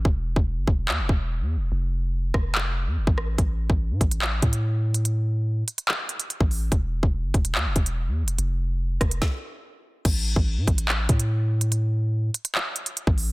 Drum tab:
CC |----------------|----------------|----------------|----------------|
HH |----------------|----------------|x-----xx--xx---x|x-----xx--xxx-o-|
CP |--------x-------|--------x-------|--------x-------|--------x-------|
SD |----------------|------r-------r-|----------------|----------------|
BD |o--o--o---o-----|------o------o--|o--o--o---o-----|-------------o--|

CC |----------------|----------------|x---------------|----------------|
HH |x-----xx--xx---x|x-----xx--------|x-----xx--xx---x|x-----xx--xxx-o-|
CP |--------x-------|----------------|--------x-------|--------x-------|
SD |----------------|------r-o-------|----------------|----------------|
BD |o--o--o---o-----|------o-o-------|o--o--o---o-----|-------------o--|